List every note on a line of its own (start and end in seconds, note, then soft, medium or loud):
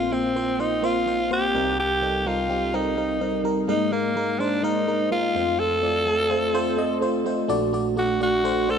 0.00 1.51 A#1 medium
0.00 1.51 A#2 medium
0.00 0.11 A#3 medium
0.00 0.12 C4 medium
0.00 0.10 F4 medium
0.00 0.14 F4 medium
0.00 0.10 C5 medium
0.11 0.33 A#3 medium
0.11 0.34 C4 medium
0.11 0.62 C4 medium
0.11 0.34 F4 medium
0.11 0.34 C5 medium
0.36 0.57 A#3 medium
0.36 0.57 C4 medium
0.36 0.58 F4 medium
0.36 0.58 C5 medium
0.59 0.81 A#3 medium
0.59 0.81 C4 medium
0.59 0.86 D#4 medium
0.59 0.81 F4 medium
0.59 0.81 C5 medium
0.82 1.05 A#3 medium
0.82 1.05 C4 medium
0.82 1.05 F4 medium
0.82 1.31 F4 medium
0.82 1.05 C5 medium
1.06 1.28 A#3 medium
1.06 1.29 C4 medium
1.06 1.29 F4 medium
1.06 1.29 C5 medium
1.30 1.52 A#3 medium
1.30 1.53 C4 medium
1.30 1.53 F4 medium
1.30 1.76 G4 loud
1.30 1.53 C5 medium
1.54 3.41 C2 medium
1.54 3.41 C3 medium
1.54 1.98 G3 medium
1.54 1.98 C4 medium
1.54 1.98 D#4 medium
1.54 1.99 A#4 medium
1.80 2.29 G4 loud
2.02 2.24 G3 medium
2.02 2.24 C4 medium
2.02 2.24 D#4 medium
2.02 2.24 A4 medium
2.26 2.48 G3 medium
2.26 2.48 C4 medium
2.26 2.48 D#4 medium
2.26 2.77 F4 medium
2.26 2.48 A#4 medium
2.49 2.71 G3 medium
2.49 2.71 C4 medium
2.49 2.72 D#4 medium
2.49 2.72 G4 medium
2.73 2.95 G3 medium
2.73 2.95 C4 medium
2.73 2.96 D#4 medium
2.73 3.46 D#4 medium
2.73 2.96 A#4 loud
2.97 3.19 G3 medium
2.97 3.19 C4 medium
2.97 3.19 D#4 medium
2.97 3.19 A#4 medium
3.20 3.43 G3 medium
3.20 3.43 C4 medium
3.20 3.43 D#4 medium
3.20 3.43 A#4 medium
3.44 3.66 G3 medium
3.44 3.66 C4 medium
3.44 3.67 D#4 medium
3.44 3.67 A#4 medium
3.68 5.31 G#2 medium
3.68 3.90 G#3 medium
3.68 3.90 A#3 medium
3.68 3.91 D#4 medium
3.68 3.94 D#4 medium
3.68 3.91 A#4 medium
3.92 4.14 G#3 medium
3.92 4.14 A#3 medium
3.92 4.41 A#3 medium
3.92 4.14 D#4 medium
3.92 4.15 A#4 medium
4.16 4.38 G#3 medium
4.16 4.38 A#3 medium
4.16 4.38 D#4 medium
4.16 4.38 A#4 medium
4.39 4.62 G#3 medium
4.39 4.62 A#3 medium
4.39 4.66 D4 medium
4.39 4.62 D#4 medium
4.39 4.62 C5 medium
4.63 4.85 G#3 medium
4.63 4.86 A#3 medium
4.63 4.86 D#4 medium
4.63 5.12 D#4 medium
4.63 4.86 A#4 loud
4.87 5.09 G#3 medium
4.87 5.09 A#3 medium
4.87 5.10 D#4 medium
4.87 5.10 A#4 medium
5.11 5.33 G#3 medium
5.11 5.33 A#3 medium
5.11 5.34 D#4 medium
5.11 5.61 F4 loud
5.11 5.34 A#4 medium
5.35 7.22 F2 medium
5.35 5.79 A3 medium
5.35 5.79 C4 medium
5.35 5.79 F4 medium
5.35 5.80 C5 medium
5.60 7.02 A4 loud
5.82 6.05 A3 medium
5.82 6.05 C4 medium
5.82 6.05 F4 medium
5.82 6.05 D5 medium
6.06 6.28 A3 medium
6.06 6.28 C4 medium
6.06 6.29 F4 medium
6.06 6.29 A4 medium
6.29 6.52 A3 medium
6.29 6.52 C4 medium
6.29 6.52 F4 medium
6.29 6.53 C5 medium
6.53 6.76 A3 loud
6.53 6.76 C4 medium
6.53 6.76 F4 medium
6.53 6.76 C5 loud
6.77 6.99 A3 medium
6.77 7.00 C4 medium
6.77 7.00 F4 medium
6.77 7.00 D#5 medium
7.01 7.24 A3 medium
7.01 7.24 C4 medium
7.01 7.24 F4 medium
7.01 7.24 C5 medium
7.25 7.47 A3 medium
7.25 7.48 C4 medium
7.25 7.48 F4 medium
7.25 7.48 C5 medium
7.48 8.79 A#1 medium
7.48 8.79 A#2 medium
7.48 7.71 A3 loud
7.48 7.71 D4 loud
7.48 7.71 F#4 medium
7.48 7.72 D5 loud
7.73 7.95 A3 medium
7.73 7.95 D4 medium
7.73 7.95 F#4 medium
7.73 7.96 D5 medium
7.96 8.19 A3 medium
7.96 8.19 D4 medium
7.96 8.19 F#4 medium
7.96 8.20 F#4 medium
7.96 8.19 D5 medium
8.20 8.43 A3 medium
8.20 8.43 D4 medium
8.20 8.43 F#4 medium
8.20 8.72 F#4 medium
8.20 8.43 D5 medium
8.44 8.66 A3 medium
8.44 8.66 D4 medium
8.44 8.67 F#4 medium
8.44 8.67 C5 loud
8.68 8.79 A3 medium
8.68 8.79 D4 medium
8.68 8.79 F#4 medium
8.68 8.79 A4 medium
8.68 8.79 C5 medium